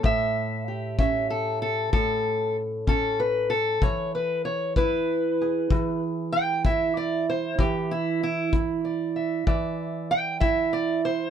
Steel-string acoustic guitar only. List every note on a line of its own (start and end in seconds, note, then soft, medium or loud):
0.03 1.92 A2 medium
0.03 0.98 E5 loud
0.68 3.19 G4 soft
0.99 2.86 C#4 medium
0.99 1.30 E5 medium
1.30 1.61 A4 medium
1.62 1.92 A4 medium
1.93 3.82 A2 medium
1.93 2.56 A4 medium
2.87 3.78 C#4 medium
2.87 3.19 A4 loud
3.20 3.51 B4 medium
3.50 3.82 A4 medium
3.82 5.71 E3 medium
3.82 4.14 C#5 medium
4.15 4.45 B4 medium
4.45 4.76 C#5 medium
4.77 6.65 E4 medium
4.77 6.02 B4 loud
5.42 7.57 G#4 soft
5.71 7.58 E3 medium
6.33 6.64 G5 loud
6.65 7.91 E4 medium
6.65 6.97 E5 loud
6.97 7.28 D5 medium
7.30 7.60 C5 loud
7.58 9.46 E3 medium
7.58 7.91 G4 medium
7.91 8.22 E4 medium
8.23 8.52 E4 loud
8.53 10.41 E4 medium
8.85 9.46 D5 soft
9.16 9.47 E5 soft
9.47 11.30 E3 medium
9.47 10.72 D5 medium
9.47 10.10 E5 medium
10.11 10.40 G5 loud
10.40 11.30 E4 medium
10.40 10.73 E5 loud
10.73 11.04 D5 medium
11.05 11.30 C5 loud